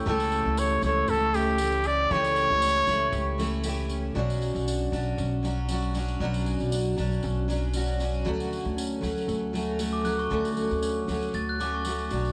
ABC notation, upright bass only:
X:1
M:4/4
L:1/16
Q:"Swing 16ths" 1/4=117
K:Bm
V:1 name="Upright bass" clef=bass
C,,3 C,,3 C,,2 C,,8 | C,,3 C,,3 C,,2 C,,8 | B,,,3 B,,,3 B,,,2 B,,,8 | B,,,3 B,,,3 B,,,2 B,,,8 |
D,,3 D,,3 D,,2 D,,8 | D,,3 D,,3 D,,2 D,,6 B,,,2 |]